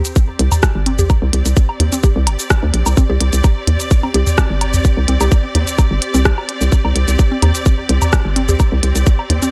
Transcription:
0.00 9.51 C4 medium
0.00 9.51 G4 medium
0.05 closed hi-hat soft
0.05 cabasa medium
0.16 kick loud
0.16 cabasa soft
0.27 9.51 D5 medium
0.39 0.49 C2 loud
0.39 closed hi-hat medium
0.52 mid tom medium
0.52 cabasa medium
0.52 low woodblock soft
0.63 kick loud
0.63 cross-stick loud
0.63 cabasa soft
0.75 1.00 G1 medium
0.86 0.92 C4 medium
0.86 closed hi-hat medium
0.99 1.08 C2 medium
0.99 1.04 G4 medium
0.99 mid tom medium
0.99 cabasa medium
1.10 kick loud
1.10 cabasa soft
1.10 low woodblock soft
1.22 1.31 C2 medium
1.33 1.43 C2 medium
1.33 closed hi-hat medium
1.46 1.54 C2 medium
1.46 closed hi-hat soft
1.46 cabasa medium
1.57 kick loud
1.57 cabasa soft
1.69 low woodblock soft
1.80 1.90 D#2 medium
1.80 closed hi-hat loud
1.80 mid tom medium
1.92 1.98 C4 medium
1.92 closed hi-hat soft
1.92 cabasa medium
2.03 2.09 G4 medium
2.03 kick loud
2.03 cabasa soft
2.16 2.28 C2 loud
2.27 2.37 G1 loud
2.27 closed hi-hat loud
2.27 low woodblock soft
2.39 cabasa medium
2.50 kick loud
2.50 cross-stick loud
2.50 cabasa soft
2.63 2.72 D2 loud
2.74 2.84 A#1 medium
2.74 closed hi-hat medium
2.86 2.95 C2 medium
2.86 cabasa medium
2.86 low woodblock soft
2.97 3.03 C4 medium
2.97 kick loud
2.97 cabasa soft
3.10 3.18 C2 loud
3.10 3.15 G4 medium
3.21 3.31 C2 medium
3.21 closed hi-hat loud
3.33 3.42 C2 medium
3.33 closed hi-hat soft
3.33 cabasa medium
3.44 kick loud
3.44 cabasa soft
3.44 low woodblock soft
3.67 3.77 D#2 medium
3.67 closed hi-hat loud
3.67 mid tom medium
3.80 closed hi-hat soft
3.80 cabasa soft
3.91 kick loud
3.91 cabasa soft
4.03 4.09 C4 medium
4.03 low woodblock soft
4.14 4.24 C2 loud
4.14 4.20 G4 medium
4.14 closed hi-hat loud
4.27 mid tom medium
4.27 cabasa soft
4.38 kick loud
4.38 cross-stick loud
4.38 cabasa soft
4.50 4.75 G1 medium
4.61 closed hi-hat medium
4.61 low woodblock soft
4.74 4.83 C2 medium
4.74 mid tom medium
4.74 cabasa medium
4.85 kick loud
4.85 cabasa soft
4.97 5.06 C2 medium
5.08 5.18 C2 medium
5.08 5.14 C4 medium
5.08 closed hi-hat loud
5.21 5.29 C2 medium
5.21 5.26 G4 medium
5.21 closed hi-hat soft
5.21 cabasa soft
5.21 low woodblock soft
5.32 kick loud
5.32 cabasa soft
5.55 5.65 D#2 medium
5.55 closed hi-hat loud
5.55 mid tom medium
5.67 closed hi-hat soft
5.67 cabasa soft
5.78 kick loud
5.78 cabasa soft
5.78 low woodblock soft
5.91 6.00 G1 medium
6.02 closed hi-hat medium
6.14 6.33 C2 medium
6.14 6.20 C4 medium
6.14 cabasa soft
6.25 6.31 G4 medium
6.25 kick loud
6.25 cross-stick loud
6.25 cabasa soft
6.38 low woodblock soft
6.49 closed hi-hat medium
6.61 6.70 C2 medium
6.61 cabasa soft
6.72 kick loud
6.72 cabasa soft
6.85 6.93 C2 medium
6.85 low woodblock soft
6.96 7.06 C2 medium
6.96 closed hi-hat medium
7.08 7.17 C2 medium
7.08 closed hi-hat soft
7.08 cabasa soft
7.19 kick loud
7.19 cabasa soft
7.32 7.37 C4 medium
7.42 7.52 D#2 medium
7.42 7.49 G4 medium
7.42 closed hi-hat medium
7.42 mid tom medium
7.42 low woodblock soft
7.55 closed hi-hat soft
7.55 cabasa medium
7.66 kick loud
7.66 cabasa soft
7.89 7.99 C2 loud
7.89 closed hi-hat medium
8.02 mid tom medium
8.02 cabasa medium
8.02 low woodblock soft
8.13 kick loud
8.13 cross-stick loud
8.13 cabasa soft
8.25 8.50 G1 medium
8.36 8.42 C4 medium
8.36 closed hi-hat medium
8.49 8.58 C2 medium
8.49 8.54 G4 medium
8.49 mid tom medium
8.49 cabasa soft
8.60 kick loud
8.60 cabasa soft
8.60 low woodblock soft
8.72 8.81 C2 loud
8.83 8.93 C2 medium
8.83 closed hi-hat medium
8.95 9.04 C2 medium
8.95 closed hi-hat soft
8.95 cabasa soft
9.07 kick loud
9.07 cabasa soft
9.19 low woodblock soft
9.30 9.40 D#2 medium
9.30 closed hi-hat medium
9.30 mid tom medium
9.42 9.48 C4 medium
9.42 closed hi-hat soft
9.42 cabasa medium

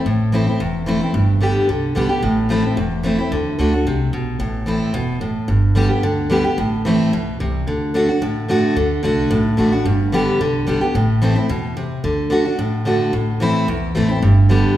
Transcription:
0.06 0.44 A1 medium
0.06 0.57 A2 medium
0.32 0.46 E3 medium
0.32 0.47 A3 medium
0.32 0.47 C4 medium
0.32 0.46 E4 medium
0.47 0.60 C4 soft
0.47 0.59 E4 medium
0.60 0.98 E1 medium
0.60 1.12 E2 medium
0.86 1.00 E3 medium
0.86 1.01 A3 medium
0.86 1.01 C4 medium
0.86 1.00 E4 medium
1.01 1.15 C4 medium
1.01 1.13 E4 medium
1.14 1.53 G1 loud
1.14 1.66 G2 medium
1.41 1.67 D3 medium
1.41 1.67 G3 medium
1.41 1.68 B3 medium
1.41 1.68 G4 medium
1.68 1.91 C2 medium
1.68 1.94 D3 medium
1.95 2.19 B1 medium
1.95 2.09 D3 medium
1.95 2.09 G3 medium
1.95 2.10 B3 medium
1.95 2.08 G4 loud
2.09 2.23 B3 soft
2.09 2.22 G4 medium
2.23 2.61 A1 medium
2.23 2.74 A2 medium
2.49 2.63 E3 medium
2.49 2.63 A3 medium
2.49 2.64 C4 medium
2.49 2.63 E4 medium
2.64 2.77 C4 soft
2.64 2.76 E4 medium
2.77 3.16 E1 medium
2.77 3.29 E2 medium
3.03 3.17 E3 medium
3.03 3.18 A3 medium
3.03 3.18 C4 medium
3.03 3.17 E4 medium
3.18 3.32 C4 soft
3.18 3.31 E4 medium
3.31 3.51 D2 loud
3.31 3.57 D3 medium
3.58 3.82 D2 medium
3.58 3.72 D3 medium
3.58 3.72 A3 medium
3.58 3.73 D4 medium
3.58 3.72 F#4 medium
3.73 3.86 D4 soft
3.73 3.85 F#4 medium
3.85 4.09 C2 medium
3.85 4.12 C3 medium
4.12 4.36 B1 medium
4.12 4.39 B2 medium
4.39 4.78 A1 medium
4.39 4.92 A2 medium
4.66 4.93 E3 medium
4.66 4.93 A3 medium
4.66 4.93 C4 medium
4.66 4.94 E4 medium
4.94 5.33 E1 medium
4.94 5.20 B2 loud
5.21 5.47 A2 medium
5.48 5.88 G1 loud
5.48 6.00 G2 medium
5.75 5.89 D3 medium
5.75 5.90 G3 medium
5.75 5.90 B3 medium
5.75 5.88 G4 loud
5.89 6.03 B3 soft
5.89 6.02 G4 medium
6.03 6.42 D2 medium
6.03 6.28 D3 medium
6.30 6.44 D3 medium
6.30 6.44 G3 medium
6.30 6.45 B3 medium
6.30 6.43 G4 loud
6.44 6.58 B3 soft
6.44 6.57 G4 medium
6.58 6.97 A1 loud
6.58 7.10 A2 medium
6.85 7.11 E3 medium
6.85 7.12 A3 medium
6.85 7.12 C4 medium
6.85 7.12 E4 medium
7.12 7.36 B1 medium
7.12 7.39 B2 medium
7.40 7.63 C2 medium
7.40 7.66 C3 medium
7.67 8.06 D2 loud
7.67 7.93 D3 medium
7.94 8.08 D3 medium
7.94 8.08 A3 medium
7.94 8.09 D4 medium
7.94 8.07 F#4 medium
8.09 8.22 D4 soft
8.09 8.21 F#4 medium
8.21 8.60 A1 medium
8.21 8.74 A2 medium
8.48 8.75 D3 medium
8.48 8.75 A3 medium
8.48 8.75 D4 medium
8.48 8.76 F#4 loud
8.76 8.95 D2 medium
8.76 9.02 D3 medium
9.03 9.26 C2 medium
9.03 9.29 D3 medium
9.03 9.30 A3 medium
9.03 9.30 D4 medium
9.03 9.30 F#4 loud
9.30 9.54 B1 medium
9.30 9.83 A2 loud
9.57 9.81 A1 medium
9.57 9.71 D3 medium
9.57 9.72 A3 medium
9.57 9.72 D4 medium
9.57 9.71 F#4 medium
9.72 9.86 D4 medium
9.72 9.85 F#4 medium
9.85 10.24 G1 loud
9.85 10.37 G2 medium
10.12 10.38 D3 medium
10.12 10.39 G3 medium
10.12 10.39 B3 loud
10.12 10.39 G4 loud
10.40 10.63 C2 medium
10.40 10.65 D3 medium
10.67 10.91 B1 loud
10.67 10.81 D3 medium
10.67 10.81 G3 medium
10.67 10.81 B3 medium
10.67 10.80 G4 medium
10.81 10.95 B3 soft
10.81 10.94 G4 medium
10.95 11.34 A1 loud
10.95 11.47 A2 medium
11.22 11.35 E3 medium
11.22 11.36 A3 medium
11.22 11.36 C4 medium
11.22 11.34 E4 medium
11.36 11.49 C4 soft
11.36 11.48 E4 medium
11.49 11.89 E2 medium
11.49 11.75 B2 loud
11.77 12.03 C3 medium
12.04 12.43 D2 medium
12.04 12.29 D3 medium
12.30 12.44 D3 medium
12.30 12.45 A3 medium
12.30 12.45 D4 medium
12.30 12.44 F#4 loud
12.45 12.59 D4 soft
12.45 12.58 F#4 medium
12.58 12.97 A1 medium
12.58 13.11 A2 medium
12.85 13.11 D3 medium
12.85 13.12 A3 medium
12.85 13.12 D4 medium
12.85 13.13 F#4 medium
13.13 13.52 A1 medium
13.13 13.65 A2 medium
13.40 13.66 E3 medium
13.40 13.67 A3 medium
13.40 13.67 C4 medium
13.40 13.67 E4 loud
13.68 13.91 B1 medium
13.68 14.20 E2 loud
13.95 14.18 A1 medium
13.95 14.09 E3 medium
13.95 14.09 A3 medium
13.95 14.09 C4 medium
13.95 14.07 E4 loud
14.09 14.23 C4 soft
14.09 14.21 E4 medium
14.22 14.62 G1 loud
14.22 14.74 G2 medium
14.49 14.75 D3 medium
14.49 14.76 G3 medium
14.49 14.76 B3 medium
14.49 14.76 G4 medium

